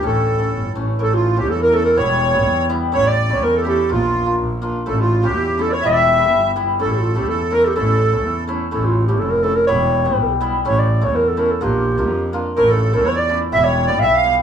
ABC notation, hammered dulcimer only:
X:1
M:2/4
L:1/16
Q:1/4=124
K:none
V:1 name="Hammered dulcimer"
[E,A,^C]2 z [E,A,C] z2 [E,A,C] z | [E,A,^C]2 z [E,A,C] z2 [E,A,C] z | [G,B,E]2 z [G,B,E] z2 [G,B,E] z | [A,^CE]2 z [A,CE] z2 [A,CE] z |
[_B,DF]2 z [B,DF] z2 [B,DF] z | [A,^CE]2 z [A,CE] z2 [A,CE] z | [G,B,E]2 z [G,B,E] z2 [G,B,E] z | [A,^CE]2 z [A,CE] z2 [A,CE] z |
[A,^CE]2 z [A,CE] z2 [A,CE] z | [A,^CE]2 z [A,CE] z2 [A,CE] z | [G,B,E]2 z [G,B,E] z2 [G,B,E] z | [A,^CE]2 z [A,CE] z2 [A,CE] z |
[_B,DF]2 z [B,DF] z2 [B,DF] z | [A,^CE]2 z [A,CE] z2 [A,CE] z | [G,B,E]2 z [G,B,E] z2 [G,B,E] z |]